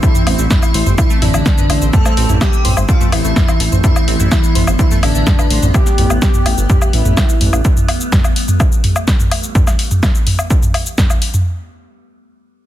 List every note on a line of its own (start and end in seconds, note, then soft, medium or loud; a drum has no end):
0.00 0.38 E3 loud
0.00 9.51 G3 medium
0.00 9.51 A3 medium
0.00 0.12 A3 medium
0.00 3.82 C4 loud
0.00 0.38 E4 loud
0.00 0.12 A4 medium
0.00 kick loud
0.00 shaker medium
0.15 0.23 C4 medium
0.15 0.23 C5 medium
0.15 mid tom medium
0.15 shaker medium
0.27 0.35 A1 medium
0.27 0.38 C4 medium
0.27 0.38 C5 medium
0.27 open hi-hat loud
0.27 low woodblock medium
0.39 0.47 A1 medium
0.39 0.50 E4 medium
0.39 0.50 E5 medium
0.39 shaker medium
0.50 0.86 E3 loud
0.50 0.86 E4 loud
0.50 kick loud
0.50 snare loud
0.50 mid tom medium
0.50 shaker medium
0.63 low woodblock medium
0.63 shaker medium
0.74 0.83 A1 medium
0.74 0.83 C5 medium
0.74 0.83 C6 medium
0.74 open hi-hat loud
0.86 0.95 G1 medium
0.86 0.95 C5 medium
0.86 0.95 C6 medium
0.86 mid tom medium
0.86 shaker medium
0.98 1.16 E3 medium
0.98 1.03 C4 medium
0.98 1.16 E4 medium
0.98 1.03 C5 medium
0.98 kick loud
0.98 low woodblock medium
0.98 shaker medium
1.10 1.21 A3 loud
1.10 1.21 A4 medium
1.10 shaker medium
1.22 1.30 A1 medium
1.22 1.84 D3 loud
1.22 1.84 D4 medium
1.22 1.33 E4 loud
1.22 1.33 E5 medium
1.22 mid tom medium
1.22 open hi-hat loud
1.34 1.42 A1 medium
1.34 1.45 E4 medium
1.34 1.45 E5 medium
1.34 low woodblock medium
1.34 shaker medium
1.46 1.51 A3 medium
1.46 1.51 A4 medium
1.46 kick loud
1.46 snare loud
1.46 shaker medium
1.58 1.66 B3 medium
1.58 1.66 B4 medium
1.58 mid tom medium
1.58 shaker medium
1.70 1.78 A1 loud
1.70 1.78 C5 medium
1.70 1.78 C6 medium
1.70 open hi-hat loud
1.70 low woodblock medium
1.82 1.90 A1 medium
1.82 1.90 C5 medium
1.82 1.90 C6 medium
1.82 shaker medium
1.93 2.02 A3 medium
1.93 2.29 A3 loud
1.93 2.29 A4 loud
1.93 2.02 A4 medium
1.93 kick loud
1.93 mid tom loud
1.93 shaker medium
2.06 2.14 C4 medium
2.06 2.14 C5 medium
2.06 snare soft
2.06 low woodblock medium
2.06 shaker medium
2.17 2.26 A1 medium
2.17 2.29 C4 medium
2.17 2.29 C5 medium
2.17 open hi-hat loud
2.29 2.38 A1 medium
2.29 2.40 E4 medium
2.29 2.40 E5 medium
2.29 mid tom medium
2.29 shaker medium
2.41 2.77 G3 loud
2.41 2.77 G4 loud
2.41 kick loud
2.41 snare loud
2.41 low woodblock medium
2.41 shaker medium
2.53 shaker medium
2.65 2.73 A1 medium
2.65 2.74 C5 medium
2.65 2.74 C6 medium
2.65 mid tom medium
2.65 open hi-hat loud
2.77 2.85 G1 medium
2.77 2.85 C5 medium
2.77 2.85 C6 medium
2.77 low woodblock medium
2.77 shaker medium
2.89 3.07 F3 loud
2.89 2.94 C4 medium
2.89 3.06 F4 medium
2.89 2.94 C5 medium
2.89 kick loud
2.89 shaker medium
3.01 3.12 A3 loud
3.01 3.12 A4 medium
3.01 mid tom medium
3.01 shaker medium
3.12 3.21 A1 loud
3.12 3.75 E3 loud
3.12 3.24 B3 medium
3.12 3.75 E4 loud
3.12 3.24 B4 medium
3.12 open hi-hat loud
3.12 low woodblock medium
3.25 3.33 A1 medium
3.25 3.36 A3 medium
3.25 3.36 A4 medium
3.25 shaker medium
3.36 3.45 E3 medium
3.36 3.45 E4 medium
3.36 kick loud
3.36 snare loud
3.36 mid tom medium
3.36 shaker medium
3.48 3.53 C4 loud
3.48 3.53 C5 medium
3.48 low woodblock medium
3.48 shaker medium
3.60 3.69 A1 loud
3.60 3.69 A3 medium
3.60 3.69 A4 medium
3.60 open hi-hat loud
3.72 3.80 A1 medium
3.72 3.77 C5 medium
3.72 3.77 C6 soft
3.72 mid tom medium
3.72 shaker medium
3.84 4.19 E3 loud
3.84 3.93 A3 medium
3.84 9.54 B3 medium
3.84 4.19 E4 loud
3.84 3.93 A4 medium
3.84 kick loud
3.84 mid tom medium
3.84 shaker medium
3.96 4.05 C4 medium
3.96 4.05 C5 medium
3.96 low woodblock medium
3.96 shaker medium
4.08 4.16 A1 loud
4.08 4.19 C4 medium
4.08 4.19 C5 medium
4.08 open hi-hat loud
4.20 4.28 A1 medium
4.20 4.30 E4 medium
4.20 4.30 E5 medium
4.20 mid tom medium
4.20 shaker medium
4.31 4.67 E3 loud
4.31 4.67 E4 loud
4.31 4.43 E4 medium
4.31 4.43 E5 medium
4.31 kick loud
4.31 snare loud
4.31 low woodblock medium
4.31 shaker medium
4.44 shaker medium
4.55 4.64 A1 medium
4.55 4.64 C5 medium
4.55 4.64 C6 medium
4.55 mid tom medium
4.55 open hi-hat loud
4.67 4.76 G1 medium
4.67 4.76 C5 medium
4.67 4.76 C6 medium
4.67 low woodblock medium
4.67 shaker medium
4.79 4.97 E3 medium
4.79 4.84 C4 medium
4.79 4.97 E4 medium
4.79 4.84 C5 medium
4.79 kick loud
4.79 shaker medium
4.91 5.02 A3 loud
4.91 5.02 A4 medium
4.91 mid tom loud
4.91 shaker medium
5.03 5.11 A1 medium
5.03 5.65 D3 loud
5.03 5.65 D4 loud
5.03 5.14 E4 loud
5.03 5.14 E5 medium
5.03 open hi-hat loud
5.03 low woodblock medium
5.15 5.23 A1 medium
5.15 5.26 E4 medium
5.15 5.26 E5 medium
5.15 shaker medium
5.27 5.32 A3 medium
5.27 5.32 A4 medium
5.27 kick loud
5.27 snare loud
5.27 mid tom medium
5.27 shaker medium
5.39 5.47 B3 medium
5.39 5.47 B4 medium
5.39 low woodblock medium
5.39 shaker medium
5.50 5.59 A1 medium
5.50 5.59 C5 medium
5.50 5.59 C6 medium
5.50 open hi-hat loud
5.63 5.71 A1 medium
5.63 5.71 C5 medium
5.63 5.71 C6 medium
5.63 mid tom loud
5.63 shaker medium
5.74 6.10 G4 loud
5.74 kick loud
5.74 low woodblock medium
5.74 shaker medium
5.86 snare soft
5.86 shaker medium
5.98 6.07 A1 medium
5.98 mid tom loud
5.98 open hi-hat loud
6.10 6.18 A1 medium
6.10 low woodblock medium
6.10 shaker medium
6.22 6.57 G4 loud
6.22 kick loud
6.22 snare loud
6.22 shaker medium
6.34 mid tom loud
6.34 shaker medium
6.46 6.54 A1 medium
6.46 open hi-hat loud
6.46 low woodblock medium
6.58 6.66 G1 medium
6.58 shaker medium
6.70 6.87 G4 medium
6.70 kick loud
6.70 mid tom loud
6.70 shaker medium
6.82 low woodblock medium
6.82 shaker medium
6.93 7.02 A1 loud
6.93 7.55 E4 loud
6.93 open hi-hat loud
7.05 7.14 A1 medium
7.05 mid tom loud
7.05 shaker medium
7.17 kick loud
7.17 snare loud
7.17 low woodblock medium
7.17 shaker medium
7.29 shaker medium
7.41 7.50 A1 medium
7.41 mid tom loud
7.41 open hi-hat loud
7.53 7.61 A1 medium
7.53 low woodblock medium
7.53 shaker medium
7.65 kick loud
7.65 shaker medium
7.77 mid tom loud
7.77 shaker medium
7.88 open hi-hat loud
7.88 low woodblock medium
8.01 shaker medium
8.12 kick loud
8.12 snare loud
8.12 mid tom loud
8.12 shaker medium
8.24 low woodblock medium
8.24 shaker medium
8.36 open hi-hat loud
8.48 mid tom loud
8.48 shaker medium
8.60 kick loud
8.60 low woodblock medium
8.60 shaker medium
8.72 shaker medium
8.84 mid tom loud
8.84 open hi-hat loud
8.96 low woodblock medium
8.96 shaker medium
9.08 kick loud
9.08 snare loud
9.08 shaker medium
9.20 mid tom medium
9.20 shaker medium
9.31 open hi-hat loud
9.31 low woodblock medium
9.43 shaker medium
9.55 kick loud
9.55 mid tom loud
9.55 shaker medium
9.67 snare soft
9.67 low woodblock medium
9.67 shaker medium
9.79 open hi-hat loud
9.91 mid tom loud
9.91 shaker medium
10.03 kick loud
10.03 snare loud
10.03 low woodblock medium
10.03 shaker medium
10.15 shaker medium
10.27 mid tom loud
10.27 open hi-hat loud
10.39 low woodblock medium
10.39 shaker medium
10.50 kick loud
10.50 shaker medium
10.63 mid tom loud
10.63 shaker medium
10.74 open hi-hat loud
10.74 low woodblock medium
10.86 shaker medium
10.98 kick loud
10.98 snare loud
10.98 mid tom loud
10.98 shaker medium
11.10 low woodblock medium
11.10 shaker medium
11.22 open hi-hat loud
11.34 mid tom loud
11.34 shaker medium